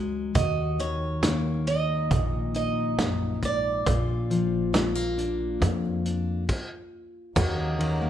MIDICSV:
0, 0, Header, 1, 7, 480
1, 0, Start_track
1, 0, Key_signature, -6, "minor"
1, 0, Tempo, 875912
1, 194, Time_signature, 4, 2, 24, 8
1, 4438, End_track
2, 0, Start_track
2, 0, Title_t, "Steel-string acoustic guitar"
2, 0, Program_c, 0, 25
2, 192, Note_on_c, 0, 75, 99
2, 437, Note_off_c, 0, 75, 0
2, 439, Note_on_c, 0, 73, 89
2, 915, Note_off_c, 0, 73, 0
2, 917, Note_on_c, 0, 75, 90
2, 1395, Note_off_c, 0, 75, 0
2, 1402, Note_on_c, 0, 75, 88
2, 1858, Note_off_c, 0, 75, 0
2, 1891, Note_on_c, 0, 74, 77
2, 3541, Note_off_c, 0, 74, 0
2, 4438, End_track
3, 0, Start_track
3, 0, Title_t, "Harmonium"
3, 0, Program_c, 1, 20
3, 4029, Note_on_c, 1, 58, 74
3, 4030, Note_on_c, 1, 49, 79
3, 4030, Note_on_c, 1, 54, 69
3, 4032, Note_on_c, 1, 63, 84
3, 4438, Note_off_c, 1, 49, 0
3, 4438, Note_off_c, 1, 54, 0
3, 4438, Note_off_c, 1, 58, 0
3, 4438, Note_off_c, 1, 63, 0
3, 4438, End_track
4, 0, Start_track
4, 0, Title_t, "Steel-string acoustic guitar"
4, 0, Program_c, 2, 25
4, 0, Note_on_c, 2, 42, 67
4, 0, Note_on_c, 2, 54, 61
4, 0, Note_on_c, 2, 56, 52
4, 0, Note_on_c, 2, 70, 59
4, 166, Note_off_c, 2, 42, 0
4, 166, Note_off_c, 2, 54, 0
4, 192, Note_on_c, 2, 39, 73
4, 193, Note_off_c, 2, 70, 0
4, 196, Note_off_c, 2, 56, 0
4, 196, Note_on_c, 2, 66, 67
4, 433, Note_on_c, 2, 51, 62
4, 682, Note_on_c, 2, 58, 60
4, 921, Note_on_c, 2, 63, 50
4, 1159, Note_on_c, 2, 46, 63
4, 1395, Note_off_c, 2, 63, 0
4, 1401, Note_on_c, 2, 63, 51
4, 1635, Note_off_c, 2, 39, 0
4, 1641, Note_on_c, 2, 42, 56
4, 1878, Note_off_c, 2, 42, 0
4, 1880, Note_on_c, 2, 44, 57
4, 2089, Note_off_c, 2, 66, 0
4, 2091, Note_off_c, 2, 58, 0
4, 2091, Note_off_c, 2, 63, 0
4, 2113, Note_off_c, 2, 46, 0
4, 2116, Note_off_c, 2, 51, 0
4, 2118, Note_off_c, 2, 44, 0
4, 2120, Note_on_c, 2, 46, 71
4, 2126, Note_on_c, 2, 65, 67
4, 2358, Note_on_c, 2, 53, 58
4, 2595, Note_on_c, 2, 56, 55
4, 2714, Note_off_c, 2, 56, 0
4, 2714, Note_on_c, 2, 58, 45
4, 2837, Note_on_c, 2, 62, 50
4, 3066, Note_on_c, 2, 41, 59
4, 3078, Note_off_c, 2, 46, 0
4, 3310, Note_off_c, 2, 62, 0
4, 3317, Note_on_c, 2, 62, 51
4, 3522, Note_off_c, 2, 41, 0
4, 3527, Note_off_c, 2, 53, 0
4, 3527, Note_off_c, 2, 62, 0
4, 3555, Note_off_c, 2, 58, 0
4, 4032, Note_on_c, 2, 39, 75
4, 4038, Note_off_c, 2, 65, 0
4, 4040, Note_on_c, 2, 66, 68
4, 4267, Note_on_c, 2, 51, 64
4, 4392, Note_on_c, 2, 58, 54
4, 4438, Note_off_c, 2, 39, 0
4, 4438, Note_off_c, 2, 51, 0
4, 4438, Note_off_c, 2, 58, 0
4, 4438, Note_off_c, 2, 66, 0
4, 4438, End_track
5, 0, Start_track
5, 0, Title_t, "Upright bass"
5, 0, Program_c, 3, 32
5, 0, Note_on_c, 3, 37, 78
5, 171, Note_off_c, 3, 37, 0
5, 193, Note_on_c, 3, 39, 87
5, 1133, Note_off_c, 3, 39, 0
5, 1156, Note_on_c, 3, 34, 85
5, 2095, Note_off_c, 3, 34, 0
5, 2119, Note_on_c, 3, 34, 84
5, 3055, Note_off_c, 3, 34, 0
5, 3078, Note_on_c, 3, 41, 78
5, 3535, Note_off_c, 3, 41, 0
5, 4035, Note_on_c, 3, 39, 93
5, 4438, Note_off_c, 3, 39, 0
5, 4438, End_track
6, 0, Start_track
6, 0, Title_t, "Cajon"
6, 194, Note_on_c, 9, 36, 74
6, 249, Note_off_c, 9, 36, 0
6, 438, Note_on_c, 9, 38, 24
6, 493, Note_off_c, 9, 38, 0
6, 673, Note_on_c, 9, 38, 78
6, 728, Note_off_c, 9, 38, 0
6, 1158, Note_on_c, 9, 36, 78
6, 1212, Note_off_c, 9, 36, 0
6, 1636, Note_on_c, 9, 38, 80
6, 1691, Note_off_c, 9, 38, 0
6, 2120, Note_on_c, 9, 36, 85
6, 2120, Note_on_c, 9, 38, 26
6, 2175, Note_off_c, 9, 36, 0
6, 2175, Note_off_c, 9, 38, 0
6, 2359, Note_on_c, 9, 38, 24
6, 2414, Note_off_c, 9, 38, 0
6, 2598, Note_on_c, 9, 38, 86
6, 2653, Note_off_c, 9, 38, 0
6, 2960, Note_on_c, 9, 38, 24
6, 3015, Note_off_c, 9, 38, 0
6, 3080, Note_on_c, 9, 36, 86
6, 3080, Note_on_c, 9, 38, 23
6, 3135, Note_off_c, 9, 36, 0
6, 3135, Note_off_c, 9, 38, 0
6, 3200, Note_on_c, 9, 38, 26
6, 3254, Note_off_c, 9, 38, 0
6, 4036, Note_on_c, 9, 36, 86
6, 4036, Note_on_c, 9, 38, 27
6, 4091, Note_off_c, 9, 36, 0
6, 4091, Note_off_c, 9, 38, 0
6, 4277, Note_on_c, 9, 38, 28
6, 4332, Note_off_c, 9, 38, 0
6, 4438, End_track
7, 0, Start_track
7, 0, Title_t, "Drums"
7, 194, Note_on_c, 9, 36, 83
7, 196, Note_on_c, 9, 42, 64
7, 249, Note_off_c, 9, 36, 0
7, 251, Note_off_c, 9, 42, 0
7, 435, Note_on_c, 9, 42, 53
7, 490, Note_off_c, 9, 42, 0
7, 674, Note_on_c, 9, 38, 73
7, 674, Note_on_c, 9, 42, 63
7, 729, Note_off_c, 9, 38, 0
7, 729, Note_off_c, 9, 42, 0
7, 915, Note_on_c, 9, 42, 46
7, 969, Note_off_c, 9, 42, 0
7, 1156, Note_on_c, 9, 36, 64
7, 1157, Note_on_c, 9, 42, 59
7, 1211, Note_off_c, 9, 36, 0
7, 1212, Note_off_c, 9, 42, 0
7, 1393, Note_on_c, 9, 42, 47
7, 1448, Note_off_c, 9, 42, 0
7, 1636, Note_on_c, 9, 38, 84
7, 1636, Note_on_c, 9, 42, 59
7, 1691, Note_off_c, 9, 38, 0
7, 1691, Note_off_c, 9, 42, 0
7, 1878, Note_on_c, 9, 36, 55
7, 1879, Note_on_c, 9, 42, 46
7, 1932, Note_off_c, 9, 36, 0
7, 1934, Note_off_c, 9, 42, 0
7, 2118, Note_on_c, 9, 36, 82
7, 2118, Note_on_c, 9, 42, 58
7, 2173, Note_off_c, 9, 36, 0
7, 2173, Note_off_c, 9, 42, 0
7, 2361, Note_on_c, 9, 42, 47
7, 2415, Note_off_c, 9, 42, 0
7, 2601, Note_on_c, 9, 38, 84
7, 2601, Note_on_c, 9, 42, 55
7, 2655, Note_off_c, 9, 38, 0
7, 2655, Note_off_c, 9, 42, 0
7, 2841, Note_on_c, 9, 42, 45
7, 2896, Note_off_c, 9, 42, 0
7, 3078, Note_on_c, 9, 36, 62
7, 3080, Note_on_c, 9, 42, 58
7, 3133, Note_off_c, 9, 36, 0
7, 3135, Note_off_c, 9, 42, 0
7, 3319, Note_on_c, 9, 42, 49
7, 3373, Note_off_c, 9, 42, 0
7, 3556, Note_on_c, 9, 36, 78
7, 3557, Note_on_c, 9, 49, 67
7, 3611, Note_off_c, 9, 36, 0
7, 3611, Note_off_c, 9, 49, 0
7, 4034, Note_on_c, 9, 36, 91
7, 4034, Note_on_c, 9, 49, 84
7, 4089, Note_off_c, 9, 36, 0
7, 4089, Note_off_c, 9, 49, 0
7, 4277, Note_on_c, 9, 51, 55
7, 4332, Note_off_c, 9, 51, 0
7, 4438, End_track
0, 0, End_of_file